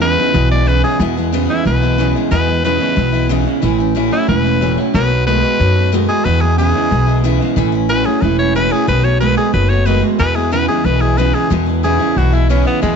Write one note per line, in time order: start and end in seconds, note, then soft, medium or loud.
0.00 0.15 E2 medium
0.00 0.16 E2 loud
0.00 0.17 C#3 loud
0.00 0.17 E3 medium
0.00 0.18 G#3 medium
0.00 0.18 B3 medium
0.00 0.16 E4 medium
0.00 0.49 B4 loud
0.17 0.32 E2 medium
0.17 0.33 C#3 medium
0.17 0.33 E3 soft
0.17 0.34 G#3 medium
0.17 0.34 B3 soft
0.17 0.34 E4 medium
0.34 0.80 B1 medium
0.34 0.63 E2 medium
0.34 0.50 E2 medium
0.34 0.64 B2 medium
0.34 0.51 B2 medium
0.34 0.51 E3 medium
0.34 0.51 G#3 medium
0.34 0.50 B3 medium
0.34 0.49 E4 medium
0.50 0.65 E3 soft
0.50 0.66 G#3 medium
0.50 0.67 B3 medium
0.50 0.67 E4 medium
0.50 0.69 D5 loud
0.66 0.82 E2 medium
0.66 0.82 C#3 medium
0.66 0.83 E3 medium
0.66 0.84 G#3 medium
0.66 0.83 B3 medium
0.66 0.82 E4 medium
0.66 0.83 B4 loud
0.83 0.98 E2 medium
0.83 0.98 C#3 medium
0.83 0.99 E3 soft
0.83 1.00 G#3 soft
0.83 1.00 B3 medium
0.83 1.00 E4 medium
0.83 1.00 G#4 loud
0.99 1.46 E2 medium
0.99 1.16 E2 medium
0.99 1.29 E2 medium
0.99 1.30 B2 loud
0.99 1.16 B2 medium
0.99 1.17 E3 medium
0.99 1.17 G#3 medium
0.99 1.16 B3 medium
0.99 1.15 E4 medium
1.16 1.32 E3 soft
1.16 1.33 G#3 medium
1.16 1.33 B3 medium
1.16 1.33 E4 medium
1.32 1.49 E2 medium
1.32 1.48 E2 medium
1.32 1.49 B2 medium
1.32 1.48 C#3 loud
1.32 1.49 E3 medium
1.32 1.50 G#3 medium
1.32 1.49 B3 medium
1.32 1.48 E4 loud
1.49 1.64 E2 medium
1.49 1.64 C#3 medium
1.49 1.64 E3 soft
1.49 1.65 G#3 soft
1.49 1.66 B3 soft
1.49 1.65 E4 soft
1.49 1.65 E4 loud
1.65 2.12 B1 medium
1.65 1.95 E2 medium
1.65 1.95 B2 medium
1.65 1.82 E3 medium
1.65 1.82 G#3 medium
1.65 1.82 B3 medium
1.65 1.80 E4 medium
1.65 2.14 B4 medium
1.82 1.98 E3 medium
1.82 1.99 G#3 medium
1.82 1.99 B3 medium
1.82 1.98 E4 medium
1.98 2.13 E2 medium
1.98 2.15 E2 medium
1.98 2.15 B2 medium
1.98 2.13 C#3 medium
1.98 2.15 E3 medium
1.98 2.16 G#3 medium
1.98 2.15 B3 medium
1.98 2.14 E4 medium
2.14 2.29 E2 medium
2.14 2.30 C#3 medium
2.14 2.31 E3 soft
2.14 2.31 G#3 medium
2.14 2.31 B3 medium
2.14 2.31 E4 medium
2.31 2.47 E2 medium
2.31 2.61 E2 medium
2.31 2.77 E2 medium
2.31 2.61 B2 medium
2.31 2.48 B2 medium
2.31 2.48 E3 medium
2.31 2.48 G#3 medium
2.31 2.47 B3 medium
2.31 2.46 E4 medium
2.31 2.63 B4 loud
2.48 2.64 E3 soft
2.48 2.65 G#3 soft
2.48 2.65 B3 soft
2.48 2.64 E4 medium
2.64 2.79 E2 medium
2.64 2.81 E2 medium
2.64 2.81 B2 medium
2.64 2.79 C#3 medium
2.64 2.81 E3 medium
2.64 2.81 G#3 medium
2.64 2.80 B3 medium
2.64 2.79 E4 medium
2.64 3.28 B4 medium
2.80 2.95 E2 medium
2.80 2.96 C#3 medium
2.80 2.95 E3 soft
2.80 2.96 G#3 soft
2.80 2.97 B3 medium
2.80 2.97 E4 medium
2.96 3.43 B1 medium
2.96 3.27 E2 medium
2.96 3.27 B2 medium
2.96 3.13 E3 medium
2.96 3.14 G#3 medium
2.96 3.13 B3 medium
2.96 3.11 E4 medium
3.13 3.29 E3 soft
3.13 3.30 G#3 medium
3.13 3.30 B3 medium
3.13 3.29 E4 medium
3.29 3.46 E2 loud
3.29 3.44 E2 medium
3.29 3.46 B2 medium
3.29 3.45 C#3 loud
3.29 3.47 E3 medium
3.29 3.46 G#3 loud
3.29 3.45 B3 loud
3.29 3.44 E4 loud
3.45 3.61 E2 medium
3.45 3.61 C#3 medium
3.45 3.61 E3 soft
3.45 3.62 G#3 soft
3.45 3.63 B3 medium
3.45 3.62 E4 medium
3.62 4.09 A1 medium
3.62 3.79 A2 medium
3.62 3.92 A2 medium
3.62 3.79 E3 medium
3.62 3.93 E3 loud
3.62 3.79 A3 medium
3.62 3.79 C#4 medium
3.62 3.77 E4 loud
3.78 3.95 A3 soft
3.78 3.95 C#4 medium
3.78 3.95 E4 medium
3.95 4.12 A2 medium
3.95 4.10 A2 medium
3.95 4.12 E3 medium
3.95 4.11 F#3 medium
3.95 4.12 A3 medium
3.95 4.12 C#4 loud
3.95 4.10 E4 medium
4.11 4.27 A2 medium
4.11 4.27 F#3 loud
4.11 4.27 A3 soft
4.11 4.28 C#4 soft
4.11 4.28 E4 medium
4.11 4.28 E4 loud
4.27 4.75 E1 medium
4.27 4.58 A2 medium
4.27 4.44 E3 medium
4.27 4.58 E3 loud
4.27 4.45 A3 medium
4.27 4.45 C#4 medium
4.27 4.43 E4 medium
4.27 4.76 B4 loud
4.44 4.61 A3 soft
4.44 4.62 C#4 medium
4.44 4.61 E4 medium
4.61 4.76 A2 medium
4.61 4.78 A2 medium
4.61 4.78 E3 medium
4.61 4.76 F#3 medium
4.61 4.78 A3 medium
4.61 4.78 C#4 medium
4.61 4.76 E4 medium
4.77 4.92 A2 medium
4.77 4.93 F#3 medium
4.77 4.94 A3 soft
4.77 4.95 C#4 medium
4.77 4.94 E4 medium
4.93 5.40 B1 loud
4.93 5.23 B2 medium
4.93 5.10 B2 medium
4.93 5.11 D#3 medium
4.93 5.24 F#3 medium
4.93 5.11 A3 medium
4.93 5.11 B3 loud
4.93 5.09 F#4 medium
4.93 5.26 B4 loud
5.10 5.27 A3 soft
5.10 5.27 B3 medium
5.10 5.27 F#4 medium
5.27 5.42 B2 loud
5.27 5.43 B2 medium
5.27 5.44 D#3 medium
5.27 5.42 G#3 loud
5.27 5.44 A3 medium
5.27 5.43 B3 medium
5.27 5.41 F#4 medium
5.27 5.91 B4 loud
5.43 5.58 B2 medium
5.43 5.58 G#3 medium
5.43 5.59 A3 soft
5.43 5.60 B3 soft
5.43 5.59 F#4 medium
5.59 6.06 F#2 medium
5.59 5.89 B2 medium
5.59 5.76 D#3 medium
5.59 5.90 F#3 medium
5.59 5.76 A3 medium
5.59 5.76 B3 medium
5.59 5.74 F#4 medium
5.76 5.92 A3 medium
5.76 5.92 B3 soft
5.76 5.92 F#4 medium
5.92 6.09 B2 medium
5.92 6.07 B2 medium
5.92 6.09 D#3 loud
5.92 6.08 G#3 medium
5.92 6.09 A3 loud
5.92 6.09 B3 medium
5.92 6.07 F#4 loud
6.08 6.23 B2 medium
6.08 6.24 G#3 medium
6.08 6.26 A3 soft
6.08 6.25 B3 soft
6.08 6.25 F#4 medium
6.08 6.26 G#4 loud
6.25 6.42 E2 medium
6.25 6.55 E2 medium
6.25 6.71 E2 medium
6.25 6.42 B2 medium
6.25 6.55 B2 medium
6.25 6.42 E3 medium
6.25 6.42 G#3 medium
6.25 6.41 B3 medium
6.25 6.40 E4 medium
6.25 6.43 B4 loud
6.41 6.58 E3 soft
6.41 6.58 G#3 soft
6.41 6.59 B3 medium
6.41 6.58 E4 medium
6.41 6.58 G#4 loud
6.58 6.73 E2 medium
6.58 6.75 E2 medium
6.58 6.75 B2 medium
6.58 6.73 C#3 medium
6.58 6.75 E3 medium
6.58 6.75 G#3 medium
6.58 6.74 B3 medium
6.58 6.73 E4 medium
6.58 7.22 G#4 loud
6.74 6.89 E2 medium
6.74 6.90 C#3 medium
6.74 6.89 E3 soft
6.74 6.91 G#3 soft
6.74 6.91 B3 soft
6.74 6.91 E4 medium
6.90 7.37 B1 medium
6.90 7.20 E2 medium
6.90 7.21 B2 medium
6.90 7.07 E3 medium
6.90 7.08 G#3 medium
6.90 7.07 B3 medium
6.90 7.05 E4 medium
7.07 7.23 E3 medium
7.07 7.24 G#3 medium
7.07 7.24 B3 medium
7.07 7.24 E4 medium
7.23 7.38 E2 medium
7.23 7.40 E2 medium
7.23 7.41 B2 loud
7.23 7.39 C#3 medium
7.23 7.41 E3 medium
7.23 7.41 G#3 loud
7.23 7.40 B3 loud
7.23 7.38 E4 medium
7.40 7.55 E2 medium
7.40 7.55 C#3 medium
7.40 7.56 E3 medium
7.40 7.57 G#3 medium
7.40 7.57 B3 medium
7.40 7.57 E4 medium
7.56 8.03 A1 medium
7.56 7.73 A2 medium
7.56 7.86 A2 medium
7.56 7.73 E3 loud
7.56 7.86 E3 medium
7.56 7.74 A3 medium
7.56 7.73 C#4 loud
7.56 7.71 E4 medium
7.72 7.89 A3 medium
7.72 7.90 C#4 medium
7.72 7.89 E4 medium
7.89 8.06 A2 medium
7.89 8.04 A2 medium
7.89 8.06 E3 medium
7.89 8.04 F#3 loud
7.89 8.06 A3 medium
7.89 8.06 C#4 medium
7.89 8.04 E4 medium
7.89 8.07 B4 loud
8.05 8.21 A2 medium
8.05 8.21 F#3 medium
8.05 8.22 A3 soft
8.05 8.22 C#4 medium
8.05 8.22 E4 medium
8.05 8.23 G#4 loud
8.21 8.68 E1 medium
8.21 8.52 A2 medium
8.21 8.38 E3 medium
8.21 8.52 E3 loud
8.21 8.39 A3 medium
8.21 8.39 C#4 medium
8.21 8.37 E4 medium
8.21 8.38 B4 medium
8.38 8.55 A3 medium
8.38 8.56 C#4 soft
8.38 8.55 E4 medium
8.38 8.55 C#5 loud
8.55 8.70 A2 medium
8.55 8.72 A2 medium
8.55 8.72 E3 medium
8.55 8.70 F#3 medium
8.55 8.72 A3 medium
8.55 8.71 C#4 medium
8.55 8.70 E4 loud
8.55 8.74 B4 loud
8.71 8.86 A2 medium
8.71 8.86 F#3 medium
8.71 8.87 A3 soft
8.71 8.88 C#4 soft
8.71 8.88 E4 medium
8.71 8.88 G#4 loud
8.87 9.34 B1 medium
8.87 9.17 B2 medium
8.87 9.04 B2 medium
8.87 9.05 D#3 medium
8.87 9.17 F#3 medium
8.87 9.05 A3 medium
8.87 9.04 B3 medium
8.87 9.03 F#4 medium
8.87 9.06 B4 loud
9.04 9.20 A3 soft
9.04 9.21 B3 soft
9.04 9.21 F#4 medium
9.04 9.20 C#5 loud
9.20 9.35 B2 medium
9.20 9.37 B2 medium
9.20 9.38 D#3 medium
9.20 9.36 G#3 medium
9.20 9.38 A3 medium
9.20 9.37 B3 medium
9.20 9.35 F#4 medium
9.20 9.37 B4 loud
9.37 9.52 B2 medium
9.37 9.52 G#3 medium
9.37 9.53 A3 soft
9.37 9.54 B3 soft
9.37 9.53 F#4 medium
9.37 9.53 G#4 loud
9.53 10.00 F#1 medium
9.53 9.83 B2 medium
9.53 9.70 D#3 medium
9.53 9.83 F#3 medium
9.53 9.70 A3 medium
9.53 9.70 B3 medium
9.53 9.68 F#4 medium
9.53 9.71 B4 medium
9.69 9.86 A3 soft
9.69 9.86 B3 soft
9.69 9.86 F#4 medium
9.69 9.87 C#5 medium
9.86 10.03 B2 medium
9.86 10.01 B2 medium
9.86 10.03 D#3 medium
9.86 10.01 G#3 medium
9.86 10.03 A3 medium
9.86 10.02 B3 medium
9.86 10.01 F#4 medium
9.86 10.02 B4 loud
10.02 10.17 B2 medium
10.02 10.18 G#3 medium
10.02 10.20 A3 soft
10.02 10.19 B3 soft
10.02 10.19 F#4 medium
10.19 10.36 E2 medium
10.19 10.49 E2 medium
10.19 10.65 E2 medium
10.19 10.36 B2 medium
10.19 10.49 B2 loud
10.19 10.36 E3 medium
10.19 10.36 G#3 medium
10.19 10.35 B3 medium
10.19 10.34 E4 medium
10.19 10.37 B4 loud
10.35 10.51 E3 soft
10.35 10.52 G#3 medium
10.35 10.52 B3 medium
10.35 10.52 E4 medium
10.35 10.52 G#4 loud
10.51 10.68 E2 medium
10.51 10.67 E2 medium
10.51 10.69 B2 medium
10.51 10.67 C#3 loud
10.51 10.69 E3 medium
10.51 10.69 G#3 medium
10.51 10.68 B3 medium
10.51 10.67 E4 medium
10.51 10.68 B4 loud
10.68 10.84 E2 medium
10.68 10.84 C#3 medium
10.68 10.83 E3 soft
10.68 10.84 G#3 soft
10.68 10.86 B3 medium
10.68 10.85 E4 medium
10.68 10.87 G#4 medium
10.84 11.31 B1 medium
10.84 11.15 E2 medium
10.84 11.15 B2 medium
10.84 11.01 E3 medium
10.84 11.02 G#3 medium
10.84 11.01 B3 medium
10.84 11.00 E4 medium
10.84 11.03 B4 loud
11.01 11.17 E3 soft
11.01 11.18 G#3 soft
11.01 11.18 B3 medium
11.01 11.18 E4 soft
11.01 11.19 G#4 loud
11.17 11.34 E2 medium
11.17 11.33 E2 medium
11.17 11.34 B2 medium
11.17 11.33 C#3 medium
11.17 11.35 E3 medium
11.17 11.35 G#3 medium
11.17 11.34 B3 medium
11.17 11.33 E4 medium
11.17 11.36 B4 medium
11.34 11.49 E2 medium
11.34 11.49 C#3 medium
11.34 11.50 E3 soft
11.34 11.50 G#3 medium
11.34 11.51 B3 medium
11.34 11.51 E4 medium
11.34 11.50 G#4 loud
11.50 11.67 E2 medium
11.50 11.97 E2 medium
11.50 11.81 E2 medium
11.50 11.67 B2 medium
11.50 11.81 B2 medium
11.50 11.67 E3 medium
11.50 11.67 G#3 medium
11.50 11.66 B3 medium
11.50 11.65 E4 medium
11.66 11.83 E3 soft
11.66 11.83 G#3 medium
11.66 11.84 B3 medium
11.66 11.83 E4 medium
11.83 12.00 E2 medium
11.83 11.98 E2 medium
11.83 12.00 B2 medium
11.83 11.99 C#3 medium
11.83 12.00 E3 medium
11.83 12.00 G#3 medium
11.83 11.99 B3 medium
11.83 11.98 E4 medium
11.83 12.19 G#4 loud
11.99 12.15 E2 medium
11.99 12.15 C#3 medium
11.99 12.15 E3 soft
11.99 12.16 G#3 soft
11.99 12.17 B3 medium
11.99 12.16 E4 medium
12.16 12.63 B1 medium
12.16 12.46 E2 medium
12.16 12.46 B2 medium
12.16 12.33 E3 medium
12.16 12.34 G#3 medium
12.16 12.32 B3 medium
12.16 12.31 E4 medium
12.16 12.35 F#4 medium
12.32 12.49 E3 soft
12.32 12.49 G#3 medium
12.32 12.50 B3 medium
12.32 12.49 E4 medium
12.49 12.66 E2 medium
12.49 12.64 E2 medium
12.49 12.66 B2 medium
12.49 12.64 C#3 medium
12.49 12.66 E3 medium
12.49 12.66 G#3 medium
12.49 12.65 B3 medium
12.49 12.66 C#4 medium
12.49 12.64 E4 medium
12.65 12.80 E2 medium
12.65 12.80 C#3 medium
12.65 12.81 E3 soft
12.65 12.82 G#3 soft
12.65 12.83 B3 soft
12.65 12.82 B3 medium
12.65 12.82 E4 medium
12.82 12.96 E2 medium
12.82 12.96 B2 medium
12.82 12.96 B2 loud
12.82 12.96 E3 medium
12.82 12.96 G#3 medium
12.82 12.96 B3 medium
12.82 12.96 E4 medium